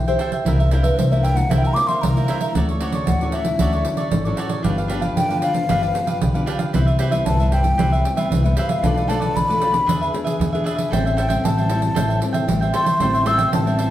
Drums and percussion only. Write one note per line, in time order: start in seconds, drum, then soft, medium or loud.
0.08 pandeiro soft
0.19 pandeiro medium
0.32 pandeiro medium
0.46 pandeiro medium
0.60 pandeiro soft
0.71 pandeiro medium
0.84 pandeiro medium
0.99 pandeiro medium
1.13 pandeiro soft
1.25 pandeiro medium
1.37 pandeiro medium
1.51 pandeiro medium
1.64 pandeiro soft
1.76 pandeiro medium
1.88 pandeiro soft
2.03 pandeiro medium
2.17 pandeiro soft
2.28 pandeiro medium
2.41 pandeiro medium
2.55 pandeiro medium
2.69 pandeiro soft
2.81 pandeiro medium
2.92 pandeiro medium
3.07 pandeiro medium
3.21 pandeiro soft
3.32 pandeiro medium
3.45 pandeiro medium
3.59 pandeiro medium
3.73 pandeiro soft
3.85 pandeiro medium
3.97 pandeiro medium
4.12 pandeiro medium
4.25 pandeiro soft
4.37 pandeiro medium
4.49 pandeiro medium
4.64 pandeiro medium
4.78 pandeiro soft
4.90 pandeiro medium
5.02 pandeiro medium
5.17 pandeiro medium
5.30 pandeiro soft
5.42 pandeiro medium
5.54 pandeiro medium
5.69 pandeiro medium
5.83 pandeiro soft
5.95 pandeiro medium
6.07 pandeiro medium
6.22 pandeiro medium
6.35 pandeiro soft
6.47 pandeiro medium
6.59 pandeiro medium
6.74 pandeiro medium
6.88 pandeiro soft
6.99 pandeiro medium
7.12 pandeiro medium
7.26 pandeiro medium
7.40 pandeiro soft
7.52 pandeiro medium
7.64 pandeiro medium
7.79 pandeiro medium
7.93 pandeiro soft
8.05 pandeiro medium
8.17 pandeiro medium
8.32 pandeiro medium
8.45 pandeiro soft
8.57 pandeiro medium
8.69 pandeiro medium
8.84 pandeiro medium
8.97 pandeiro soft
9.10 pandeiro medium
9.22 pandeiro medium
9.37 pandeiro medium
9.50 pandeiro soft
9.62 pandeiro medium
9.74 pandeiro medium
9.89 pandeiro medium
10.03 pandeiro soft
10.14 pandeiro medium
10.27 pandeiro medium
10.41 pandeiro medium
10.55 pandeiro soft
10.66 pandeiro medium
10.79 pandeiro medium
10.93 pandeiro medium
11.07 pandeiro soft
11.18 pandeiro medium
11.30 pandeiro medium
11.45 pandeiro medium
11.58 pandeiro soft
11.70 pandeiro medium
11.82 pandeiro medium
11.96 pandeiro medium
12.10 pandeiro soft
12.22 pandeiro medium
12.34 pandeiro medium
12.49 pandeiro medium
12.62 pandeiro soft
12.74 pandeiro medium
12.86 pandeiro medium
13.00 pandeiro medium
13.15 pandeiro soft
13.26 pandeiro medium
13.39 pandeiro medium
13.53 pandeiro medium
13.67 pandeiro soft
13.79 pandeiro medium